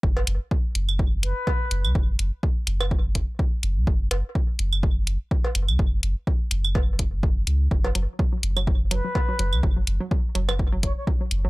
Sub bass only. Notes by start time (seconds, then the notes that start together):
0.03 F#1
0.27 F#1
0.75 F#1
1.71 F#1
1.85 C#2
1.95 F#1
2.19 F#1
2.67 F#1
3.63 F#1
3.77 C#2
3.87 F#1
4.11 F#1
4.59 F#1
5.55 F#1
5.69 C#2
5.79 F#1
6.03 F#1
6.51 F#1
7.13 F#1
7.47 C#2
7.71 F#1
7.95 F#1
8.43 F#1
9.39 F#1
9.53 C#2
9.63 F#1
9.87 F#1
10.35 F#1
11.31 F#1
11.45 C#2